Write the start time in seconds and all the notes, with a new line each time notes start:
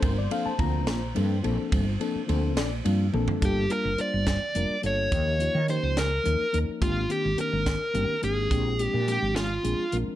Already playing: C3 F3 A#3 C4 D4 F4 C5
0.02 G1 A#4, kick, ride
0.18 D5
0.30 F3 A#3 C4 D4 A4 F5, ride
0.45 A5, muted fretless electric bass stroke
0.58 D2 F3 A#3 C4 D4 F4 A#5, kick, ride
0.87 A#1, snare, ride
1.14 G2 F3 A#3 C4 D4 A4, ride
1.43 A#1 F3 A#3 C4 D4 A4, ride
1.72 G1, kick, ride
2.00 F3 A#3 C4 D4 A4, ride
2.15 muted fretless electric bass stroke
2.27 D2 F3 A#3 C4 D4 A4 C5, ride
2.57 A#1 D5, snare, ride
2.84 G2 F3 A#3 C4 D4 F4, ride
3.13 A#1 F3 A#3 C4 D4 A4, high tom
3.28 muted fretless electric bass stroke, floor tom
3.41 G1 G3 A#3 D4 F4 A4, kick, closed hi-hat
3.45 G4
3.69 G3 A#3 D4 F4 A#4, closed hi-hat
3.85 G1
3.97 G3 A#3 D4 F4 C5 D5, closed hi-hat
4.14 G1
4.27 kick, snare, closed hi-hat
4.55 F1 G3 A#3 D4 F4 A#4, closed hi-hat
4.70 muted fretless electric bass stroke
4.82 G1 G3 A#3 D4 F4 A4, closed hi-hat
4.86 C#5
5.11 D#2 F3 A#3 C#4 G4, kick, closed hi-hat
5.39 F3 A#3 C#4 D#4 F4, closed hi-hat
5.55 D#3
5.68 F3 A#3 C#4 D#4 G4 C5, closed hi-hat
5.83 C#2
5.97 A#4, snare, closed hi-hat
6.24 D#2 F3 A#3 C#4 D#4 A#4, closed hi-hat
6.53 D#2 F3 A#3 C#4 D#4 A#4, closed hi-hat
6.81 G#1 D#3 A#3 C4 D4 F4 G4, kick, closed hi-hat
7.09 D#3 A#3 C4 D4 G4, closed hi-hat
7.25 G#1
7.36 D#3 A#3 C4 D4 A#4, muted fretless electric bass stroke, closed hi-hat
7.41 A#4
7.53 G#1
7.66 kick, snare, closed hi-hat
7.94 G1 D#3 A#3 C4 D4 G4, closed hi-hat
8.22 G#1 D#3 A#3 C4 D4 G4 G#4, closed hi-hat
8.51 A#1 F3 G#3 C4 D4 G4, kick, closed hi-hat
8.78 F3 G#3 C4 D4 G4, closed hi-hat
8.83 G4
8.94 A#2
9.07 F3 G#3 C4 D4 G4, closed hi-hat
9.22 G#1
9.36 F4, snare, closed hi-hat
9.63 A#1 F3 G#3 C4 D4 G#4, closed hi-hat
9.79 muted fretless electric bass stroke
9.92 A#1 F3 G#3 C4 D4 A#4, closed hi-hat
10.07 muted fretless electric bass stroke